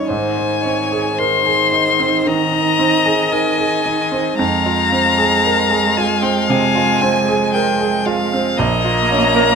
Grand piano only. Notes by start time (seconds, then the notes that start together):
Already playing: G3 C#4 D#4 F4
0.10 G#2
0.37 D#4
0.65 C4
0.92 G#4
1.19 A#4
1.46 G#4
1.72 D#4
2.00 C4
2.26 D#3
2.52 D#4
2.79 C4
3.05 G#4
3.32 A#4
3.58 G#4
3.86 D#4
4.12 C4
4.39 F2
4.66 F4
4.92 C4
5.18 G#4
5.46 A#4
5.71 G#4
5.98 F4
6.22 C4
6.50 C3
6.75 F4
7.02 C4
7.29 G#4
7.55 A#4
7.80 G#4
8.06 F4
8.33 C4
8.59 A#1
8.84 F4
9.11 C#4
9.36 A#4